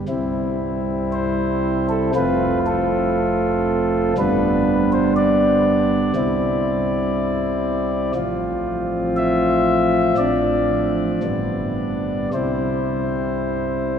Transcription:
0.08 C2 C3 G3 C4 E4
1.13 C5
1.89 A4
2.15 F1 F2 A3 C4 F4 B4
2.66 A4
4.18 G1 G2 G3 B3 D4 B4
4.92 C5
5.16 D5
6.16 C2 C3 G3 C4 E4
8.15 A1 A2 F3 C4 F4
9.16 E5
10.18 A1 A2 F3 C4 D4 D5
11.23 G1 G2 G3 B3 D4
12.33 C2 C3 G3 C4 E4 C5

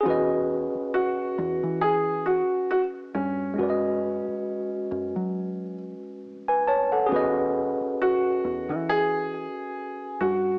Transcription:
0.01 C#4 G#4
0.05 E2 F#4 B4
0.10 D#5
0.75 muted fingered electric bass stroke
0.94 F#4
1.39 E2
1.64 E3
1.81 G#4
2.26 F#4
2.71 F#4
3.15 G2 C#4
3.54 G#3 C#4
3.58 F#2 F#4 B4
3.63 D5
3.70 D#5
4.28 muted fingered electric bass stroke
4.92 F#2
5.16 F#3
6.48 B4 G#5
6.68 C#5 A5
6.92 A4 F#5
7.06 C#4 G#4
7.11 E2 F#4 B4
7.16 D#5
7.81 muted fingered electric bass stroke
8.02 F#4
8.44 E2
8.69 E3
8.89 G#4
10.21 G2 F#4

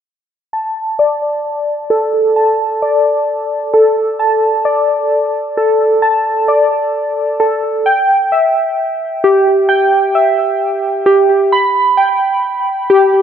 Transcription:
0.53 A5
0.99 D5
1.90 A4
2.36 A5
2.82 D5
3.74 A4
4.19 A5
4.65 D5
5.57 A4
6.02 A5
6.48 D5
7.40 A4
7.86 G5
8.32 E5
9.24 G4
9.69 G5
10.15 E5
11.06 G4
11.52 B5
11.97 G5
12.90 G4

